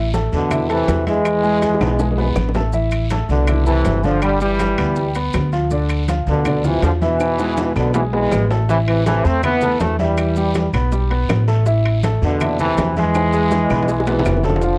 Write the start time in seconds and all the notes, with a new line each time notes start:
Already playing: A1
0.13 A3 A4 A5, high bongo, high conga, low timbale, short guiro, maracas
0.32 E2 B2 D3, high bongo, high conga, short guiro, maracas
0.50 E3 E4 E5, high bongo, high conga, low conga, high timbale, long guiro, claves, maracas
0.69 C3 E3 A3 A4 A5, high conga, high timbale, maracas
0.88 E2, high bongo, low bongo, high conga, high timbale, low timbale, short guiro, maracas
1.06 E3 G#3 E4 E5, high bongo, high conga, high timbale, short guiro, maracas
1.25 high bongo, high conga, high timbale, long guiro, claves, maracas
1.43 G#3 G#4 G#5, high conga, maracas
1.62 high bongo, high conga, high timbale, low timbale, short guiro, maracas
1.74 high bongo
1.80 B1 B3 B4 B5, high conga, high timbale, short guiro, claves, maracas
1.87 high bongo
1.99 G#3 G#4 G#5, low bongo, high conga, high timbale, long guiro, maracas
2.11 low bongo
2.18 B3 B4 B5, high conga, low timbale, maracas
2.24 low bongo
2.36 A1, low bongo, high conga, short guiro, claves, maracas
2.49 low bongo
2.54 A3 A4 A5, high conga, low timbale, short guiro, maracas
2.61 low bongo
2.73 E3 E4 E5, high conga, long guiro, maracas
2.91 high conga, high timbale, claves, maracas
3.10 A3 A4 A5, high conga, high timbale, low timbale, short guiro, maracas
3.29 C2 B2 D3, high conga, short guiro, maracas
3.47 E3 E4 E5, high conga, low conga, high timbale, long guiro, claves, maracas
3.66 C3 E3 A3 A4 A5, high conga, low conga, maracas
3.85 G1, high conga, high timbale, low timbale, short guiro, maracas
4.03 D3 F3 D4 D5, high conga, short guiro, maracas
4.22 D3 G3, high conga, high timbale, long guiro, claves, maracas
4.41 E3 G3 G4 G5, high conga, maracas
4.59 high conga, high timbale, low timbale, short guiro, maracas
4.78 D2 B3 B4 B5, high conga, high timbale, short guiro, claves, maracas
4.96 G3 G4 G5, high conga, long guiro, maracas
5.15 B3 B4 B5, high conga, high timbale, maracas
5.33 D2, high conga, high timbale, low timbale, short guiro, claves, maracas
5.52 F3 F4 F5, high conga, short guiro, maracas
5.71 D3 D4 D5, high conga, long guiro, maracas
5.90 high conga, high timbale, claves, maracas
6.08 F3 F4 F5, high conga, high timbale, low timbale, short guiro, maracas
6.27 D2 B2 D3, high conga, short guiro, maracas
6.45 D3 D4 D5, high conga, low conga, high timbale, long guiro, claves, maracas
6.64 C3 E3 F3 F4 F5, high conga, low conga, maracas
6.83 E2 D3 F3, high conga, high timbale, low timbale, short guiro, maracas
7.01 B2 E3 E4 E5, high conga, short guiro, maracas
7.20 high conga, high timbale, long guiro, claves, maracas
7.39 G#3 G#4 G#5, high conga, high timbale, maracas
7.57 high conga, high timbale, short guiro, maracas
7.76 B1 B2 D3 B3 B4 B5, high conga, low timbale, short guiro, claves, maracas
7.94 B2 E3 G#3 G#4 G#5, high conga, low timbale, long guiro, maracas
8.13 E3 G#3 B3 B4 B5, high conga, low timbale
8.31 A1, high conga, low timbale, short guiro, claves, maracas
8.50 A3 A4 A5, high conga, low timbale, short guiro, maracas
8.69 C3 E3 E4 E5, high bongo, high conga, long guiro, maracas
8.88 C3 E3, high bongo, high conga, high timbale, claves
9.06 C3 E3 A3 A4 A5, high bongo, high conga, high timbale, low timbale, short guiro, maracas
9.25 E2 A3 C4, high conga, short guiro, maracas
9.43 E3 B3 E4 E5, high bongo, high conga, low conga, high timbale, long guiro, claves, maracas
9.61 A3 A4 A5, high bongo, high conga, low conga, maracas
9.80 E2 E3 A3, high bongo, low bongo, high conga, high timbale, low timbale, short guiro, maracas
9.99 E3 G3 E4 E5, high bongo, high conga, short guiro, maracas
10.17 high bongo, high conga, high timbale, long guiro, claves, maracas
10.36 G3 G4 G5, high bongo, high conga, maracas
10.54 high bongo, high conga, high timbale, low timbale, short guiro, maracas
10.73 B1 B3 B4 B5, high conga, high timbale, short guiro, claves, maracas
10.92 G3 G4 G5, high bongo, high conga, long guiro, maracas
11.10 B3 B4 B5, high bongo, high conga, high timbale
11.29 A1, high bongo, low bongo, high conga, high timbale, low timbale, short guiro, claves, maracas
11.48 A3 A4 A5, high bongo, high conga, short guiro, maracas
11.66 E3 E4 E5, high bongo, high conga, long guiro, maracas
11.85 high bongo, high conga, high timbale, claves
12.03 A3 A4 A5, high bongo, high conga, high timbale, low timbale, short guiro, maracas
12.22 E2 B2 D3, high conga, short guiro, maracas
12.40 E3 E4 E5, high bongo, high conga, low conga, high timbale, long guiro, claves, maracas
12.59 C3 E3 A3 A4 A5, high bongo, high conga, low conga, maracas
12.77 E2, high bongo, low bongo, high conga, high timbale, low timbale, short guiro, maracas
12.96 E3 G#3 E4 E5, high bongo, high conga, short guiro, maracas
13.15 high bongo, high timbale, long guiro, claves, maracas
13.33 G#3 G#4 G#5, high bongo, high conga, maracas
13.51 high bongo, high conga, short guiro, maracas
13.70 B1 B3 B4 B5, high conga, short guiro, claves, maracas
13.83 high conga
13.88 G#3 G#4 G#5, high bongo, long guiro, maracas
14.00 high bongo
14.07 C3 E3 B3 B4 B5, low timbale, maracas
14.12 high bongo
14.19 low conga
14.26 F1, low timbale, short guiro, claves, maracas
14.32 low conga
14.37 low bongo
14.44 D3 F3 A3 A4 A5, low conga, low timbale, short guiro, maracas
14.50 low bongo
14.56 low conga
14.62 F3 F4 F5, high bongo, high conga, long guiro, maracas